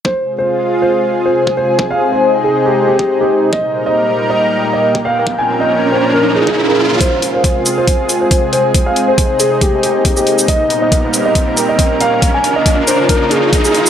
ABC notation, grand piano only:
X:1
M:4/4
L:1/16
Q:"Swing 16ths" 1/4=138
K:Fm
V:1 name="Grand piano"
c2 z c3 z c3 z c2 z c2 | z f2 c2 z A2 G2 G2 z G2 z | e2 z e3 z e3 z e2 z f2 | z a2 e2 z c2 B2 A2 z A2 z |
c2 z c3 z c3 z c2 z c2 | z f2 c2 z A2 G2 G2 z G2 z | e2 z e3 z e3 z e2 z f2 | z a2 e2 z c2 B2 A2 z A2 z |]